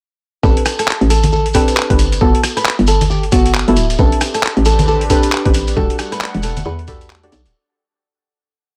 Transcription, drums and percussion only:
0.43 kick, shekere
0.57 closed hi-hat
0.66 cross-stick, open hi-hat, shekere
0.79 cross-stick, closed hi-hat, shekere
0.87 clap, shekere
1.01 closed hi-hat
1.10 open hi-hat, shekere
1.23 closed hi-hat, high conga, shekere
1.33 shekere
1.46 open hi-hat
1.54 kick, open hi-hat, shekere
1.68 closed hi-hat, shekere
1.77 clap, shekere
1.90 kick, closed hi-hat
1.99 open hi-hat, shekere
2.12 closed hi-hat, shekere
2.21 kick, shekere
2.35 closed hi-hat
2.44 cross-stick, open hi-hat, shekere
2.57 cross-stick, closed hi-hat, shekere
2.65 clap, shekere
2.79 closed hi-hat
2.87 open hi-hat, shekere
3.01 closed hi-hat, high conga, shekere
3.11 shekere
3.23 closed hi-hat
3.32 kick, open hi-hat, shekere
3.46 closed hi-hat, shekere
3.54 clap, shekere
3.68 closed hi-hat
3.76 open hi-hat, shekere
3.90 closed hi-hat, shekere
3.99 kick, shekere
4.12 closed hi-hat
4.21 cross-stick, open hi-hat, shekere
4.34 cross-stick, closed hi-hat, shekere
4.43 clap, shekere
4.57 closed hi-hat
4.65 open hi-hat, shekere
4.79 closed hi-hat, high conga, shekere
4.88 shekere
5.01 open hi-hat
5.10 kick, open hi-hat, shekere
5.23 closed hi-hat, shekere
5.32 clap, shekere
5.45 kick, closed hi-hat
5.54 open hi-hat, shekere
5.67 closed hi-hat, shekere
5.77 kick, shekere
5.90 closed hi-hat
5.99 cross-stick, open hi-hat, shekere
6.12 cross-stick, closed hi-hat, shekere
6.21 clap, shekere
6.34 closed hi-hat
6.43 open hi-hat, shekere
6.57 closed hi-hat, high conga, shekere
6.65 shekere
6.79 closed hi-hat
6.88 kick, open hi-hat, shekere
7.01 closed hi-hat, shekere
7.10 clap, shekere
7.23 closed hi-hat
7.32 open hi-hat, shekere
7.46 closed hi-hat, shekere

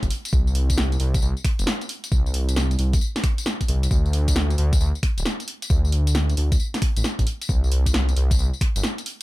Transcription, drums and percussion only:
0.03 kick, closed hi-hat, tambourine
0.11 open hi-hat
0.25 closed hi-hat, tambourine
0.33 kick, tambourine
0.47 tambourine
0.55 open hi-hat
0.70 kick, closed hi-hat, tambourine
0.78 snare, tambourine
0.92 closed hi-hat, tambourine
1.00 open hi-hat
1.14 kick, closed hi-hat, tambourine
1.22 tambourine
1.37 tambourine
1.45 finger snap, kick, open hi-hat
1.59 closed hi-hat, tambourine
1.67 snare, tambourine
1.81 closed hi-hat, tambourine
1.89 open hi-hat
2.04 closed hi-hat, tambourine
2.12 kick, tambourine
2.26 tambourine
2.34 open hi-hat
2.49 closed hi-hat, tambourine
2.56 snare, tambourine
2.71 closed hi-hat, tambourine
2.79 open hi-hat
2.93 kick, closed hi-hat, tambourine
3.01 tambourine
3.16 snare, open hi-hat, tambourine
3.24 finger snap, kick, open hi-hat
3.38 closed hi-hat, tambourine
3.46 snare, tambourine
3.61 kick, closed hi-hat, tambourine
3.68 open hi-hat
3.83 closed hi-hat, tambourine
3.91 kick, tambourine
4.06 tambourine
4.13 open hi-hat
4.28 kick, closed hi-hat, tambourine
4.36 snare, tambourine
4.50 closed hi-hat, tambourine
4.58 open hi-hat
4.73 kick, closed hi-hat, tambourine
4.81 tambourine
4.95 tambourine
5.03 finger snap, kick, open hi-hat
5.18 closed hi-hat, tambourine
5.25 snare, tambourine
5.40 closed hi-hat, tambourine
5.48 open hi-hat
5.62 closed hi-hat, tambourine
5.70 kick, tambourine
5.85 tambourine
5.92 open hi-hat
6.07 closed hi-hat, tambourine
6.15 snare, tambourine
6.30 closed hi-hat, tambourine
6.37 open hi-hat
6.52 kick, closed hi-hat, tambourine
6.60 tambourine
6.74 snare, open hi-hat, tambourine
6.82 finger snap, kick, open hi-hat
6.97 closed hi-hat, tambourine
7.04 snare, tambourine
7.19 kick, closed hi-hat, tambourine
7.27 open hi-hat
7.42 closed hi-hat, tambourine
7.49 kick, tambourine
7.64 tambourine
7.72 open hi-hat
7.86 kick, closed hi-hat, tambourine
7.94 snare, tambourine
8.09 closed hi-hat, tambourine
8.17 open hi-hat
8.31 kick, closed hi-hat, tambourine
8.39 tambourine
8.53 tambourine
8.61 finger snap, kick, open hi-hat
8.76 closed hi-hat, tambourine
8.83 snare, tambourine
8.98 closed hi-hat, tambourine
9.06 open hi-hat

